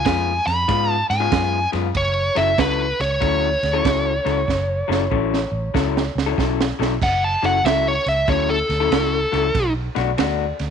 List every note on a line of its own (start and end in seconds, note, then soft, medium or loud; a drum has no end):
0.05 0.38 F2 medium
0.05 0.32 C#3 medium
0.05 0.32 G#3 medium
0.05 0.32 B3 medium
0.05 0.32 F4 medium
0.05 0.46 G#5 medium
0.05 kick medium
0.05 snare medium
0.05 ride medium
0.47 0.64 F2 medium
0.47 0.92 B5 loud
0.47 snare soft
0.47 ride medium
0.68 1.02 G#2 medium
0.68 0.95 C#3 medium
0.68 0.95 G#3 medium
0.68 0.95 B3 medium
0.68 0.95 F4 loud
0.68 kick medium
0.68 snare soft
0.68 ride medium
0.92 1.06 A5 loud
1.10 1.28 G#2 medium
1.10 1.69 G#5 medium
1.10 snare soft
1.10 ride medium
1.20 1.30 C#3 medium
1.20 1.30 G#3 medium
1.20 1.30 B3 medium
1.20 1.31 F4 loud
1.31 1.65 F#2 medium
1.31 1.58 C#3 medium
1.31 1.58 G#3 medium
1.31 1.58 B3 medium
1.31 1.59 F4 medium
1.31 kick medium
1.31 snare loud
1.31 ride medium
1.72 1.91 F#2 medium
1.72 1.87 C#3 medium
1.72 1.87 G#3 medium
1.72 1.87 B3 medium
1.72 1.87 F4 medium
1.72 snare soft
1.72 ride medium
1.95 2.28 F#1 medium
1.95 2.38 C#5 loud
1.95 kick medium
1.95 ride medium
2.35 2.54 F#1 medium
2.35 2.50 F#3 medium
2.35 2.50 C#4 medium
2.35 2.50 E4 loud
2.35 2.51 A4 medium
2.35 2.59 E5 medium
2.35 snare soft
2.35 ride medium
2.58 2.91 C#2 medium
2.58 2.85 F#3 medium
2.58 2.85 C#4 medium
2.58 2.85 E4 medium
2.58 2.85 A4 medium
2.58 3.01 B4 medium
2.58 kick medium
2.58 snare loud
2.58 ride medium
3.00 3.17 C#2 medium
3.00 6.35 C#5 medium
3.00 snare soft
3.00 ride medium
3.21 3.55 D2 medium
3.21 3.48 F#3 medium
3.21 3.48 C#4 medium
3.21 3.48 E4 loud
3.21 3.48 A4 medium
3.21 kick medium
3.21 ride medium
3.63 3.81 D2 medium
3.63 snare soft
3.63 ride medium
3.73 3.83 F#3 medium
3.73 3.83 C#4 medium
3.73 3.84 E4 medium
3.73 3.84 A4 medium
3.84 4.18 C#2 medium
3.84 4.11 F#3 medium
3.84 4.11 C#4 medium
3.84 4.12 E4 medium
3.84 4.12 A4 medium
3.84 kick medium
3.84 snare loud
3.84 ride medium
4.25 4.44 C#2 medium
4.25 4.40 F#3 medium
4.25 4.40 C#4 medium
4.25 4.40 E4 medium
4.25 4.40 A4 medium
4.25 snare soft
4.25 ride medium
4.48 4.81 F#1 medium
4.48 kick medium
4.48 snare medium
4.88 5.07 F#1 medium
4.88 5.03 F#3 medium
4.88 5.03 C#4 medium
4.88 5.03 E4 medium
4.88 5.04 A4 medium
4.88 snare medium
5.11 5.45 A1 medium
5.11 5.38 F#3 medium
5.11 5.38 C#4 medium
5.11 5.38 E4 medium
5.11 5.38 A4 medium
5.11 kick medium
5.34 snare medium
5.52 5.70 A1 medium
5.74 6.08 C#2 medium
5.74 6.01 F#3 medium
5.74 6.01 C#4 medium
5.74 6.02 E4 medium
5.74 6.02 A4 medium
5.74 kick medium
5.74 snare medium
5.97 snare medium
6.15 6.33 C#2 medium
6.15 snare medium
6.26 6.36 F#3 medium
6.26 6.37 C#4 medium
6.26 6.37 E4 medium
6.26 6.38 A4 loud
6.37 6.71 B1 medium
6.37 6.64 F#3 medium
6.37 6.65 C#4 medium
6.37 6.65 E4 medium
6.37 6.65 A4 medium
6.37 kick medium
6.37 snare medium
6.61 snare medium
6.79 6.97 B1 medium
6.79 6.93 F#3 medium
6.79 6.93 C#4 medium
6.79 6.94 E4 medium
6.79 6.94 A4 medium
6.79 snare medium
7.02 7.35 F#1 medium
7.02 7.23 F#5 loud
7.02 kick loud
7.02 snare soft
7.02 crash medium
7.24 7.44 A5 medium
7.43 7.60 F#1 medium
7.43 7.57 F#3 medium
7.43 7.57 C#4 medium
7.43 7.57 E4 medium
7.43 7.57 A4 medium
7.43 7.65 F#5 medium
7.43 snare soft
7.43 ride medium
7.64 7.97 C#2 medium
7.64 7.91 F#3 medium
7.64 7.91 C#4 medium
7.64 7.92 E4 medium
7.64 7.92 A4 medium
7.64 7.86 E5 medium
7.64 snare loud
7.64 ride medium
7.88 8.07 C#5 medium
8.06 8.24 C#2 medium
8.06 8.28 E5 medium
8.06 snare soft
8.06 ride medium
8.28 8.61 D2 medium
8.28 8.55 F#3 medium
8.28 8.55 C#4 medium
8.28 8.55 E4 medium
8.28 8.55 A4 medium
8.28 8.49 C#5 medium
8.28 kick loud
8.28 snare soft
8.28 ride medium
8.50 9.72 A4 loud
8.69 8.87 D2 medium
8.69 snare soft
8.69 ride medium
8.80 8.90 F#3 medium
8.80 8.90 C#4 medium
8.80 8.91 E4 medium
8.80 8.91 A4 medium
8.91 9.24 C#2 medium
8.91 9.18 F#3 medium
8.91 9.18 C#4 medium
8.91 9.18 E4 medium
8.91 9.18 A4 medium
8.91 snare loud
8.91 ride medium
9.32 9.50 C#2 medium
9.32 9.46 F#3 medium
9.32 9.47 C#4 medium
9.32 9.47 E4 medium
9.32 9.47 A4 medium
9.32 snare soft
9.32 ride medium
9.55 9.88 B1 medium
9.55 kick loud
9.55 snare soft
9.55 ride medium
9.95 10.14 B1 medium
9.95 10.10 B2 medium
9.95 10.10 A3 medium
9.95 10.10 D4 medium
9.95 10.10 F#4 loud
9.95 snare soft
9.95 ride medium
10.17 10.51 D2 medium
10.17 10.44 B2 medium
10.17 10.44 A3 medium
10.17 10.44 D4 medium
10.17 10.45 F#4 medium
10.17 snare medium
10.17 ride medium
10.59 10.70 D2 medium
10.59 snare soft
10.59 ride medium